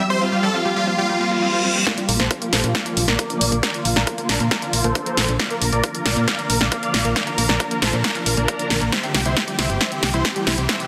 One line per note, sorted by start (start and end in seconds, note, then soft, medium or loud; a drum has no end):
0.10 0.15 G3 medium
0.10 0.19 C5 loud
0.21 0.28 C4 medium
0.21 0.30 F4 medium
0.32 0.39 G3 loud
0.32 0.41 F4 medium
0.43 0.48 G3 loud
0.43 0.52 A4 medium
0.54 0.61 C4 medium
0.54 0.63 F4 medium
0.65 0.72 G3 loud
0.65 0.74 F4 medium
0.76 0.81 G3 loud
0.76 0.85 F4 medium
0.87 0.94 C4 medium
0.87 0.97 F4 medium
0.98 1.05 G3 loud
0.98 1.08 F4 medium
0.98 reverse cymbal medium
1.09 1.14 G3 medium
1.09 1.19 F4 medium
1.20 1.23 G3 medium
1.20 1.30 F4 medium
1.31 1.36 F4 medium
1.31 1.78 F4 loud
1.42 1.45 C4 medium
1.53 1.58 C5 medium
1.64 1.67 C4 medium
1.75 1.80 C4 medium
1.86 1.91 A#3 medium
1.86 1.96 D5 medium
1.86 1.96 F5 medium
1.86 kick loud
1.86 snare soft
1.86 closed hi-hat medium
1.98 2.04 D4 medium
1.98 2.07 F4 medium
1.98 closed hi-hat soft
2.09 2.18 A#1 medium
2.09 2.15 A#3 loud
2.09 2.18 F4 medium
2.09 open hi-hat loud
2.20 2.29 A#1 medium
2.20 2.24 A#3 loud
2.20 2.29 A4 medium
2.20 2.29 C5 loud
2.20 snare soft
2.31 2.37 D4 medium
2.31 2.40 F4 medium
2.31 kick loud
2.31 closed hi-hat loud
2.42 2.49 A#3 loud
2.42 2.51 F4 medium
2.42 closed hi-hat soft
2.53 2.62 A#1 loud
2.53 2.57 A#3 loud
2.53 2.62 A4 medium
2.53 2.62 C5 medium
2.53 snare soft
2.53 open hi-hat medium
2.64 2.73 A#2 medium
2.64 2.71 D4 medium
2.64 2.73 F4 medium
2.64 closed hi-hat soft
2.75 2.82 A#3 loud
2.75 2.84 D5 medium
2.75 2.84 F5 medium
2.75 kick loud
2.75 snare soft
2.75 closed hi-hat medium
2.86 2.90 A#3 loud
2.86 2.95 F4 medium
2.86 closed hi-hat soft
2.97 3.06 A#1 medium
2.97 3.04 D4 medium
2.97 3.06 F4 medium
2.97 open hi-hat loud
3.08 3.17 A#1 medium
3.08 3.15 A#3 loud
3.08 3.54 A#4 medium
3.08 3.54 D5 loud
3.08 snare soft
3.08 closed hi-hat soft
3.19 3.23 A#3 loud
3.19 kick loud
3.19 closed hi-hat medium
3.30 3.37 D4 medium
3.30 closed hi-hat soft
3.41 3.50 A#1 medium
3.41 3.48 A#3 loud
3.41 open hi-hat loud
3.52 3.61 A#1 medium
3.52 3.56 A#3 loud
3.52 closed hi-hat soft
3.63 3.70 D4 medium
3.63 3.72 A#4 medium
3.63 3.72 D5 medium
3.63 kick loud
3.63 snare soft
3.63 closed hi-hat medium
3.74 3.81 A#3 loud
3.74 3.83 F4 medium
3.74 closed hi-hat soft
3.85 3.94 A#1 medium
3.85 3.90 A#3 loud
3.85 3.94 F4 medium
3.85 open hi-hat loud
3.96 4.05 A#1 medium
3.96 4.03 D4 medium
3.96 4.05 D4 medium
3.96 4.05 A#4 medium
3.96 snare soft
3.96 closed hi-hat soft
4.07 4.14 A#3 loud
4.07 4.16 F4 medium
4.07 kick loud
4.07 closed hi-hat medium
4.18 4.23 A#3 loud
4.18 4.27 F4 medium
4.18 closed hi-hat soft
4.29 4.38 A#1 medium
4.29 4.36 D4 medium
4.29 4.38 D4 medium
4.29 4.38 A#4 medium
4.29 snare medium
4.29 open hi-hat loud
4.40 4.49 A#2 medium
4.40 4.47 A#3 loud
4.40 4.49 F4 medium
4.40 closed hi-hat soft
4.51 4.56 A#3 loud
4.51 4.60 A#4 medium
4.51 4.60 D5 medium
4.51 kick loud
4.51 snare medium
4.51 closed hi-hat medium
4.62 4.69 D4 medium
4.62 4.72 F4 medium
4.62 closed hi-hat soft
4.73 4.83 A#1 medium
4.73 4.80 A#3 medium
4.73 4.83 F4 medium
4.73 open hi-hat loud
4.84 4.94 A#1 medium
4.84 4.89 A#3 loud
4.84 5.31 A4 medium
4.84 5.31 C5 loud
4.84 closed hi-hat soft
4.95 5.02 D4 medium
4.95 kick loud
4.95 closed hi-hat medium
5.06 5.13 A#3 loud
5.06 closed hi-hat soft
5.17 5.27 A#1 medium
5.17 5.22 A#3 loud
5.17 snare medium
5.17 open hi-hat loud
5.28 5.38 A#1 medium
5.28 5.35 D4 medium
5.28 closed hi-hat soft
5.39 5.46 A#3 medium
5.39 5.49 D5 medium
5.39 5.49 F5 medium
5.39 kick loud
5.39 snare medium
5.39 closed hi-hat medium
5.50 5.55 A#3 medium
5.50 5.60 A#4 medium
5.50 closed hi-hat soft
5.61 5.71 A#1 medium
5.61 5.68 D4 medium
5.61 5.71 A#4 medium
5.61 open hi-hat loud
5.72 5.82 A#1 medium
5.72 5.79 A#3 loud
5.72 5.82 A#4 medium
5.72 5.82 D5 medium
5.72 closed hi-hat soft
5.83 5.88 A#3 loud
5.83 5.93 A#4 medium
5.83 kick loud
5.83 closed hi-hat medium
5.94 6.01 D4 medium
5.94 6.04 A#4 medium
5.94 closed hi-hat soft
6.06 6.15 A#1 loud
6.06 6.13 A#3 loud
6.06 6.15 A#4 medium
6.06 6.15 D5 medium
6.06 snare medium
6.06 open hi-hat loud
6.17 6.26 A#2 medium
6.17 6.21 A#3 loud
6.17 6.26 A#4 medium
6.17 closed hi-hat soft
6.28 6.35 D4 medium
6.28 6.37 F5 medium
6.28 kick loud
6.28 snare medium
6.28 closed hi-hat medium
6.39 6.46 A#3 loud
6.39 6.48 A#4 medium
6.39 closed hi-hat soft
6.50 6.59 A#1 medium
6.50 6.54 A#3 loud
6.50 6.59 A#4 medium
6.50 open hi-hat loud
6.61 6.70 A#1 medium
6.61 6.68 D4 medium
6.61 7.07 D5 medium
6.61 7.07 F5 loud
6.61 snare medium
6.61 closed hi-hat soft
6.72 6.79 A#3 loud
6.72 kick loud
6.72 closed hi-hat medium
6.83 6.87 A#3 loud
6.83 closed hi-hat soft
6.94 7.03 A#1 loud
6.94 7.01 D4 medium
6.94 snare medium
6.94 open hi-hat loud
7.05 7.14 A#1 medium
7.05 7.12 A#3 loud
7.05 closed hi-hat soft
7.16 7.21 A#3 medium
7.16 7.25 D5 medium
7.16 7.25 F5 loud
7.16 kick loud
7.16 snare medium
7.16 closed hi-hat medium
7.27 7.34 D4 medium
7.27 7.36 A#4 medium
7.27 closed hi-hat soft
7.38 7.47 A#1 medium
7.38 7.45 A#3 loud
7.38 7.47 A#4 medium
7.38 open hi-hat loud
7.49 7.58 A#1 medium
7.49 7.54 A#3 loud
7.49 7.58 A#4 medium
7.49 7.58 D5 medium
7.49 snare medium
7.60 7.67 D4 medium
7.60 7.69 A#4 medium
7.60 kick loud
7.60 closed hi-hat medium
7.71 7.78 A#3 loud
7.71 7.80 A#4 medium
7.71 closed hi-hat soft
7.82 7.91 A#1 medium
7.82 7.87 A#3 loud
7.82 7.91 A4 medium
7.82 7.91 C5 medium
7.82 snare medium
7.82 open hi-hat loud
7.93 8.02 A#2 medium
7.93 8.00 D4 medium
7.93 8.02 A#4 medium
7.93 closed hi-hat soft
8.04 8.11 A#3 loud
8.04 8.13 D4 medium
8.04 kick loud
8.04 snare medium
8.04 closed hi-hat medium
8.15 8.20 A#3 medium
8.15 8.24 A#4 medium
8.15 closed hi-hat soft
8.26 8.35 A#1 medium
8.26 8.33 D4 medium
8.26 8.36 A#4 medium
8.26 open hi-hat loud
8.37 8.47 A#1 medium
8.37 8.44 A#3 loud
8.37 8.84 D4 medium
8.37 8.84 A#4 loud
8.37 closed hi-hat soft
8.48 8.53 A#3 loud
8.48 kick loud
8.48 closed hi-hat medium
8.59 8.66 D4 medium
8.59 closed hi-hat soft
8.70 8.80 A#1 loud
8.70 8.77 A#3 loud
8.70 snare medium
8.70 open hi-hat loud
8.81 8.91 A#1 medium
8.81 8.86 A#3 loud
8.81 closed hi-hat soft
8.92 8.97 G3 medium
8.92 9.02 C5 medium
8.92 9.02 E5 medium
8.92 kick loud
8.92 snare medium
8.92 closed hi-hat medium
8.92 riser medium
9.03 9.10 C4 medium
9.03 9.13 G4 medium
9.03 closed hi-hat soft
9.14 9.24 C2 medium
9.14 9.21 G3 medium
9.14 9.24 G4 medium
9.14 snare medium
9.14 open hi-hat loud
9.25 9.35 C2 medium
9.25 9.30 G3 medium
9.25 9.35 E4 medium
9.25 9.35 C5 medium
9.25 closed hi-hat soft
9.36 9.43 C4 medium
9.36 9.46 G4 medium
9.36 kick loud
9.36 snare medium
9.36 closed hi-hat medium
9.47 9.54 G3 medium
9.47 9.57 G4 medium
9.47 closed hi-hat soft
9.58 9.68 C2 medium
9.58 9.63 G3 medium
9.58 9.68 E4 medium
9.58 9.68 C5 medium
9.58 snare medium
9.58 open hi-hat loud
9.69 9.79 G1 medium
9.69 9.76 C4 medium
9.69 9.79 G4 medium
9.69 closed hi-hat soft
9.81 9.85 G3 medium
9.81 9.90 C5 medium
9.81 9.90 E5 medium
9.81 kick loud
9.81 snare medium
9.81 closed hi-hat medium
9.92 9.98 C4 medium
9.92 10.01 G4 medium
9.92 closed hi-hat soft
10.03 10.12 C2 medium
10.03 10.10 G3 medium
10.03 10.12 G4 medium
10.03 snare medium
10.03 open hi-hat loud
10.14 10.23 C2 medium
10.14 10.18 G3 medium
10.14 10.23 E4 medium
10.14 10.23 C5 medium
10.14 closed hi-hat soft
10.25 10.32 C4 medium
10.25 kick loud
10.25 snare medium
10.25 closed hi-hat medium
10.36 10.43 G3 loud
10.36 10.45 G4 medium
10.36 closed hi-hat soft
10.47 10.56 C2 loud
10.47 10.51 G3 loud
10.47 10.56 E4 medium
10.47 10.56 C5 medium
10.47 snare medium
10.47 open hi-hat loud
10.58 10.67 C2 medium
10.58 10.65 C4 medium
10.58 10.67 G4 medium
10.58 closed hi-hat soft
10.69 10.73 G3 medium
10.69 10.78 C5 medium
10.69 10.78 E5 loud
10.69 kick loud
10.69 snare medium
10.69 closed hi-hat medium
10.80 10.87 C4 medium
10.80 10.87 G4 medium
10.80 closed hi-hat soft